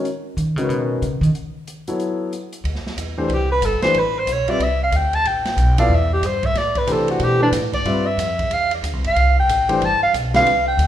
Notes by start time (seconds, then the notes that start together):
0.05 closed hi-hat
0.37 D#3, closed hi-hat
0.56 C#3 D#3 G#3 C#4 F#4 B4, closed hi-hat
0.69 B2, closed hi-hat
1.02 C#3, closed hi-hat
1.21 D#3, closed hi-hat
1.35 closed hi-hat
1.67 closed hi-hat
1.87 F#3 B3 E4 A4 C#5, closed hi-hat
2.00 closed hi-hat
2.33 closed hi-hat
2.53 closed hi-hat
2.64 D2, ride
2.75 snare
2.85 muted upright bass stroke, snare
2.97 E2, hi-hat pedal, ride
3.18 E3 A3 D4 G4 C5
3.29 C2, ride
3.34 G4
3.52 B4
3.61 G1, hi-hat pedal, ride
3.65 A4
3.81 E3 A3 D4 G4 B4 C5, muted upright bass stroke, snare, ride
3.93 A1, ride
3.99 B4
4.19 C5
4.26 B1, hi-hat pedal, ride
4.32 C#5
4.46 G3 C4 F4 B4 D5 E5, muted upright bass stroke, ride
4.59 C2, ride
4.63 E5
4.83 F5
4.91 D2, hi-hat pedal, ride
4.96 G5
5.13 A5, ride
5.24 A1 G5, ride
5.45 snare, ride
5.56 B1, hi-hat pedal, ride
5.78 F3 B3 E4 A4 D5 F5, ride
5.89 E2
5.95 E5
6.13 G4
6.21 G2, hi-hat pedal, ride
6.26 C5
6.43 E5, kick, ride
6.53 A2, snare, ride
6.58 D5
6.75 B4, kick, ride
6.87 C3 E3 A3 D4 G4 C5, hi-hat pedal, ride
6.92 A4
7.08 F#4, ride
7.20 B2, ride
7.24 G4
7.39 E3 A3 D4 G4 B4
7.52 A2, snare, hi-hat pedal, ride
7.73 D5, kick, ride
7.85 G2 G3 C4 F4 B4 E5, ride
8.06 E5
8.17 F2, hi-hat pedal, ride
8.39 kick, ride
8.50 E2 F5, ride
8.71 D5, ride
8.82 D2, hi-hat pedal, ride
8.93 C2
9.04 G1 F5, ride
9.15 C2, ride
9.40 G5
9.48 A1, hi-hat pedal, ride
9.69 E3 A3 D4 G4 C5, ride
9.81 G1, ride
9.85 A5
10.01 F5, muted upright bass stroke
10.13 B1, hi-hat pedal, ride
10.34 D3 G3 C4 F4 B4 F5, snare, ride
10.46 C2, ride
10.68 G5
10.77 D2, hi-hat pedal, ride